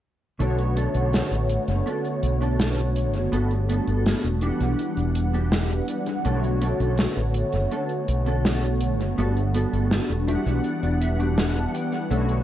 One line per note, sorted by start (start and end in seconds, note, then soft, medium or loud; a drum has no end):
0.39 0.86 B1 medium
0.39 3.25 D3 medium
0.39 3.25 A3 medium
0.39 3.25 B3 medium
0.39 0.58 C#4 loud
0.39 0.58 D4 medium
0.39 3.26 F#4 medium
0.39 0.59 A4 loud
0.39 3.26 C#5 medium
0.39 closed hi-hat medium
0.58 closed hi-hat medium
0.76 1.31 C#4 medium
0.76 1.31 D4 medium
0.76 1.32 A4 medium
0.76 closed hi-hat medium
0.94 1.20 B1 medium
0.94 closed hi-hat medium
1.13 snare medium
1.13 closed hi-hat medium
1.31 1.57 A1 medium
1.31 closed hi-hat medium
1.50 closed hi-hat medium
1.68 1.81 F#1 medium
1.68 closed hi-hat soft
1.86 2.04 C#4 medium
1.86 2.05 D4 medium
1.86 2.05 A4 medium
1.86 closed hi-hat medium
2.04 closed hi-hat soft
2.22 3.14 B1 medium
2.22 muted clean electric guitar stroke soft
2.22 closed hi-hat medium
2.41 2.87 C#4 medium
2.41 2.87 D4 medium
2.41 2.87 A4 medium
2.41 closed hi-hat medium
2.59 snare loud
2.59 closed hi-hat medium
2.78 closed hi-hat soft
2.96 closed hi-hat loud
3.13 3.27 F#1 medium
3.13 closed hi-hat soft
3.31 3.78 G1 medium
3.31 4.35 G3 medium
3.31 4.35 A3 medium
3.31 3.51 B3 loud
3.31 4.35 B3 medium
3.31 4.36 D4 medium
3.31 3.51 F#4 medium
3.31 4.36 F#4 medium
3.31 3.51 A4 loud
3.31 closed hi-hat medium
3.51 closed hi-hat soft
3.69 4.24 B3 medium
3.69 4.24 F#4 medium
3.69 4.24 A4 medium
3.69 closed hi-hat medium
3.87 4.13 G1 medium
3.87 closed hi-hat soft
4.06 snare loud
4.06 closed hi-hat medium
4.24 4.49 E1 medium
4.24 closed hi-hat medium
4.41 6.17 E3 medium
4.41 6.18 G3 medium
4.41 6.18 B3 medium
4.41 5.01 D4 medium
4.41 6.18 D4 medium
4.41 5.01 F#4 medium
4.41 5.01 G4 medium
4.41 6.19 F#5 loud
4.41 closed hi-hat medium
4.60 4.73 B1 medium
4.60 closed hi-hat soft
4.79 closed hi-hat medium
4.97 5.80 E1 medium
4.97 closed hi-hat medium
5.15 muted clean electric guitar stroke soft
5.15 closed hi-hat medium
5.33 5.79 D4 medium
5.33 5.80 F#4 medium
5.33 5.80 G4 medium
5.33 closed hi-hat soft
5.52 snare loud
5.52 closed hi-hat medium
5.71 closed hi-hat medium
5.88 closed hi-hat loud
6.06 closed hi-hat medium
6.24 6.71 B1 medium
6.24 9.10 D3 medium
6.24 9.10 A3 medium
6.24 9.11 B3 medium
6.24 6.43 C#4 loud
6.24 6.44 D4 medium
6.24 9.12 F#4 loud
6.24 6.44 A4 loud
6.24 9.11 C#5 medium
6.24 closed hi-hat medium
6.44 closed hi-hat medium
6.61 7.17 C#4 medium
6.61 7.17 D4 medium
6.61 7.17 A4 medium
6.61 closed hi-hat medium
6.80 7.06 B1 medium
6.80 closed hi-hat soft
6.98 snare loud
6.98 closed hi-hat medium
7.16 7.42 A1 medium
7.16 closed hi-hat soft
7.34 closed hi-hat loud
7.53 7.66 F#1 medium
7.53 closed hi-hat medium
7.71 7.90 C#4 medium
7.71 7.90 D4 medium
7.71 7.90 A4 medium
7.71 closed hi-hat medium
7.89 closed hi-hat soft
8.08 9.00 B1 medium
8.08 muted clean electric guitar stroke soft
8.08 closed hi-hat loud
8.26 8.72 C#4 medium
8.26 8.72 D4 medium
8.26 8.73 A4 medium
8.26 closed hi-hat medium
8.45 snare loud
8.45 closed hi-hat medium
8.63 closed hi-hat soft
8.81 closed hi-hat medium
9.00 9.12 F#1 medium
9.00 closed hi-hat soft
9.17 9.64 G1 medium
9.17 10.20 G3 medium
9.17 10.20 A3 medium
9.17 9.36 B3 loud
9.17 10.21 B3 medium
9.17 10.21 D4 medium
9.17 9.36 F#4 medium
9.17 10.21 F#4 medium
9.17 9.37 A4 loud
9.17 closed hi-hat medium
9.37 closed hi-hat soft
9.54 10.09 B3 medium
9.54 10.10 F#4 medium
9.54 10.10 A4 medium
9.54 closed hi-hat medium
9.73 9.98 G1 medium
9.73 closed hi-hat soft
9.91 snare loud
9.91 closed hi-hat medium
10.09 10.35 E1 medium
10.09 closed hi-hat soft
10.26 12.03 E3 medium
10.26 12.03 G3 medium
10.26 12.04 B3 medium
10.26 10.86 D4 medium
10.26 12.04 D4 medium
10.26 10.86 F#4 medium
10.26 10.87 G4 medium
10.26 10.62 E5 medium
10.26 12.04 F#5 loud
10.26 closed hi-hat medium
10.46 10.59 B1 loud
10.46 closed hi-hat medium
10.64 10.81 D5 medium
10.64 closed hi-hat medium
10.83 11.65 E1 medium
10.83 11.00 D5 medium
10.83 closed hi-hat soft
11.00 11.35 E5 medium
11.00 muted clean electric guitar stroke soft
11.00 closed hi-hat medium
11.19 11.65 D4 medium
11.19 11.65 F#4 medium
11.19 11.65 G4 medium
11.19 closed hi-hat soft
11.38 11.55 F#5 medium
11.38 snare loud
11.38 closed hi-hat medium
11.56 11.73 A5 medium
11.56 closed hi-hat soft
11.74 12.08 G5 medium
11.74 closed hi-hat medium
11.92 closed hi-hat medium
12.09 12.43 B1 medium
12.09 12.43 D3 medium
12.09 12.43 A3 medium
12.09 12.43 B3 medium
12.09 12.29 C#4 loud
12.09 12.29 D4 medium
12.09 12.43 F#4 loud
12.09 12.29 A4 loud
12.09 12.43 C#5 medium
12.09 closed hi-hat medium
12.29 closed hi-hat soft